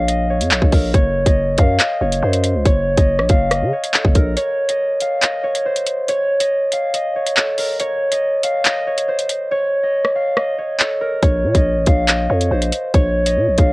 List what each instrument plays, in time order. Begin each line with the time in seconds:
Already playing: 808-style bass A#1, harp C#5 F5
0.08 harp D#5, closed hi-hat
0.30 harp C#5
0.40 808-style bass F2, closed hi-hat
0.51 808-style bass A#1, harp A4, clap
0.62 808-style bass A#1, kick
0.72 808-style bass A#1, harp A#4, kick, open hi-hat
0.94 808-style bass F#1, harp C#5, kick, closed hi-hat
1.26 808-style bass F#1, harp D#5, kick, closed hi-hat
1.58 808-style bass F#2, harp F5, kick, closed hi-hat
1.80 harp D#5, clap, closed hi-hat
2.01 808-style bass F#1, harp C#5
2.12 closed hi-hat
2.22 808-style bass F#2, harp C5
2.33 closed hi-hat
2.44 closed hi-hat
2.55 808-style bass C#2
2.65 808-style bass F#1, harp C#5, kick, closed hi-hat
2.97 808-style bass F#1, harp D#5, kick, closed hi-hat
3.19 808-style bass A#1, cross-stick
3.29 808-style bass F#1, harp F5, kick, closed hi-hat
3.51 harp D#5, cross-stick, closed hi-hat
3.62 808-style bass C#3
3.73 harp C#5
3.84 closed hi-hat
3.94 harp A4, clap
4.05 808-style bass F#1, kick
4.15 808-style bass A#1, harp A#4, kick, closed hi-hat
4.37 harp C#5, closed hi-hat
4.69 harp D#5, closed hi-hat
5.01 harp F5, closed hi-hat
5.22 harp D#5, clap, closed hi-hat
5.44 harp C#5
5.55 closed hi-hat
5.66 harp C5
5.76 closed hi-hat
5.87 closed hi-hat
6.08 harp C#5, closed hi-hat
6.40 harp D#5, closed hi-hat
6.72 harp F5, closed hi-hat
6.94 harp D#5, closed hi-hat
7.16 harp C#5
7.27 closed hi-hat
7.37 harp A4, clap
7.58 harp A#4, open hi-hat
7.80 harp C#5, closed hi-hat
8.12 harp D#5, closed hi-hat
8.43 harp F5, closed hi-hat
8.65 harp D#5, clap, closed hi-hat
8.87 harp C#5
8.98 closed hi-hat
9.08 harp C5
9.19 closed hi-hat
9.29 closed hi-hat
9.51 harp C#5
9.83 harp D#5
10.05 cross-stick
10.15 harp F5
10.37 harp D#5, cross-stick
10.58 harp C#5
10.80 harp A4, clap
11.01 harp A#4
11.23 808-style bass A#1, harp C#5, kick, closed hi-hat
11.44 808-style bass A#2
11.55 808-style bass A#1, harp D#5, kick, closed hi-hat
11.76 808-style bass A1
11.86 808-style bass A#1, harp F5, kick, closed hi-hat
12.08 harp D#5, clap, closed hi-hat
12.30 808-style bass F2, harp C#5
12.41 closed hi-hat
12.51 808-style bass A#1, harp C5
12.62 closed hi-hat
12.72 closed hi-hat
12.94 808-style bass A#1, harp C#5, kick, closed hi-hat
13.26 harp D#5, closed hi-hat
13.37 808-style bass A#2
13.48 808-style bass A#1
13.58 808-style bass A#1, harp F5, kick, closed hi-hat